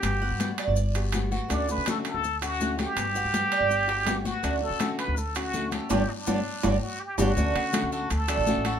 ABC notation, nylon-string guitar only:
X:1
M:4/4
L:1/8
Q:1/4=164
K:D
V:1 name="Nylon-string guitar"
[G,B,F] [B,F] [G,B,F]2 z [B,F] [G,B,F] [B,F] | [D,A,CF] [A,CF] [D,A,CF]2 z [A,CF] [D,A,CF] [A,CF] | [G,B,] [B,F] [G,B,]2 z [B,F] [G,B,F] [B,F] | [D,A,CF] [A,CF] [D,A,CF]2 z [A,CF] [D,A,CF] [A,CF] |
[G,B,D] z [G,B,D] z [G,B,D] z2 [G,B,D] | [D,A,CF] [A,CF] [D,A,CF]2 z [A,CF] [D,A,CF] [A,CF] |]